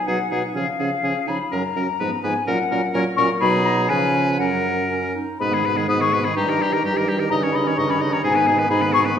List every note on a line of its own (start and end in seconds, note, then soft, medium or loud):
0.07 0.18 B2 medium
0.07 0.18 F#3 soft
0.07 0.18 D#4 soft
0.07 0.18 G#4 medium
0.07 0.46 F#5 medium
0.30 0.42 B2 soft
0.30 0.42 F#3 soft
0.30 0.41 D#4 soft
0.30 0.42 G#4 soft
0.47 0.53 F#5 soft
0.54 0.66 C#3 soft
0.54 0.66 F3 soft
0.54 0.65 C#4 soft
0.54 0.67 G#4 soft
0.54 1.29 F5 medium
0.79 0.91 C#3 soft
0.79 0.90 F3 soft
0.79 0.90 C#4 soft
0.79 0.90 G#4 soft
1.02 1.14 C#3 soft
1.02 1.15 F3 soft
1.02 1.14 C#4 soft
1.02 1.14 G#4 soft
1.27 1.39 C#3 soft
1.27 1.39 F3 soft
1.27 1.38 D#4 soft
1.27 1.38 G#4 soft
1.27 1.53 B5 medium
1.51 1.63 F#2 medium
1.51 1.63 F#3 soft
1.51 1.62 C#4 medium
1.51 1.63 A#4 soft
1.51 2.23 A#5 medium
1.75 1.87 F#2 soft
1.75 1.87 F#3 soft
1.75 1.86 C#4 soft
1.75 1.87 A#4 soft
1.99 2.11 G#2 medium
1.99 2.11 F3 soft
1.99 2.11 B3 soft
1.99 2.10 B4 soft
2.23 2.35 G#2 medium
2.23 2.35 F3 soft
2.23 2.34 B3 soft
2.23 2.34 B4 soft
2.23 2.46 G#5 medium
2.46 2.58 A#2 medium
2.46 2.58 F#3 medium
2.46 2.57 C#4 medium
2.46 2.58 A#4 medium
2.46 2.93 F#5 medium
2.70 2.82 A#2 medium
2.70 2.82 F#3 medium
2.70 2.81 C#4 medium
2.70 2.82 A#4 soft
2.94 3.05 A#2 medium
2.94 3.05 F#3 medium
2.94 3.04 C#4 medium
2.94 3.05 A#4 medium
2.94 3.00 C#5 medium
3.16 3.29 A#2 medium
3.16 3.29 F#3 medium
3.16 3.28 C#4 medium
3.16 3.28 A#4 medium
3.16 3.22 C#6 loud
3.40 3.87 B2 medium
3.40 3.91 F#3 medium
3.40 3.91 D#4 medium
3.40 3.91 G#4 medium
3.40 3.67 B5 loud
3.65 3.87 A#5 loud
3.88 4.39 C#3 medium
3.88 4.41 F3 medium
3.88 4.38 C#4 medium
3.88 4.39 B4 medium
3.88 4.37 G#5 loud
4.38 5.14 F#2 medium
4.38 5.16 F#3 medium
4.38 4.84 C#4 medium
4.38 5.14 A#4 medium
4.38 4.88 F#5 medium
4.90 5.17 C#4 medium
5.15 5.39 D#4 medium
5.39 5.83 G#2 medium
5.39 5.54 B2 medium
5.39 5.54 B3 medium
5.39 5.55 B4 medium
5.39 5.84 B5 medium
5.52 5.67 D#3 medium
5.52 5.66 G#3 medium
5.52 5.67 G#4 medium
5.64 5.78 B2 medium
5.64 5.77 B3 medium
5.64 5.79 B4 medium
5.76 5.88 D#3 medium
5.76 5.87 G#3 medium
5.76 5.88 G#4 medium
5.88 6.30 G#2 medium
5.88 6.02 B2 medium
5.88 6.01 B3 medium
5.88 6.03 B4 medium
5.88 6.00 D#6 medium
5.99 6.15 D#3 medium
5.99 6.12 G#3 medium
5.99 6.15 G#4 medium
5.99 6.23 C#6 medium
6.11 6.26 B2 medium
6.11 6.25 B3 medium
6.11 6.26 B4 medium
6.23 6.35 D#3 soft
6.23 6.34 G#3 medium
6.23 6.36 G#4 medium
6.23 6.35 B5 medium
6.35 6.78 G2 medium
6.35 6.49 G3 medium
6.35 6.48 D#4 medium
6.35 6.51 G4 medium
6.35 7.05 A#5 medium
6.47 6.61 D#3 medium
6.47 6.60 G4 medium
6.47 6.63 A#4 medium
6.59 6.72 G3 medium
6.59 6.72 D#4 medium
6.59 6.74 G4 medium
6.70 6.82 D#3 medium
6.70 6.82 G4 medium
6.70 6.84 A#4 medium
6.82 7.25 G2 medium
6.82 6.97 G3 medium
6.82 6.96 D#4 medium
6.82 6.98 G4 medium
6.94 7.09 D#3 medium
6.94 7.08 G4 medium
6.94 7.10 A#4 medium
7.06 7.20 G3 medium
7.06 7.19 D#4 medium
7.06 7.21 G4 medium
7.17 7.29 D#3 medium
7.17 7.29 G4 medium
7.17 7.31 A#4 medium
7.29 7.72 G2 medium
7.29 7.43 C#3 medium
7.29 7.42 D#4 medium
7.29 7.45 D#5 medium
7.29 7.36 A#5 loud
7.41 7.55 D#3 medium
7.41 7.54 C#4 medium
7.41 7.57 C#5 medium
7.52 7.66 C#3 medium
7.52 7.66 D#4 medium
7.52 7.69 D#5 medium
7.52 7.78 B5 medium
7.64 7.76 D#3 medium
7.64 7.76 C#4 medium
7.64 7.78 C#5 medium
7.76 8.18 G2 medium
7.76 7.91 C#3 medium
7.76 7.89 D#4 medium
7.76 7.92 D#5 medium
7.76 7.88 C#6 medium
7.88 8.01 D#3 medium
7.88 8.01 C#4 medium
7.88 8.03 C#5 medium
7.88 8.11 B5 medium
7.99 8.13 C#3 medium
7.99 8.12 D#4 medium
7.99 8.14 D#5 medium
8.11 8.23 D#3 medium
8.11 8.22 C#4 medium
8.11 8.23 C#5 medium
8.11 8.17 A#5 medium
8.23 8.64 G#2 medium
8.23 8.37 B2 medium
8.23 8.35 D#4 medium
8.23 8.37 G#4 medium
8.23 8.69 G#5 loud
8.34 8.48 D#3 medium
8.34 8.47 B3 medium
8.34 8.48 B4 medium
8.46 8.59 B2 medium
8.46 8.59 D#4 medium
8.46 8.60 G#4 medium
8.58 8.69 D#3 medium
8.58 8.69 B3 medium
8.58 8.70 B4 medium
8.70 9.11 G#2 medium
8.70 8.83 B2 medium
8.70 8.83 D#4 medium
8.70 8.83 G#4 medium
8.70 8.93 B5 loud
8.81 8.95 D#3 medium
8.81 8.95 B3 medium
8.81 8.94 B4 medium
8.93 9.06 B2 medium
8.93 9.07 D#4 medium
8.93 9.07 G#4 medium
8.93 8.99 C#6 loud
9.05 9.16 D#3 medium
9.05 9.16 B3 medium
9.05 9.17 B4 medium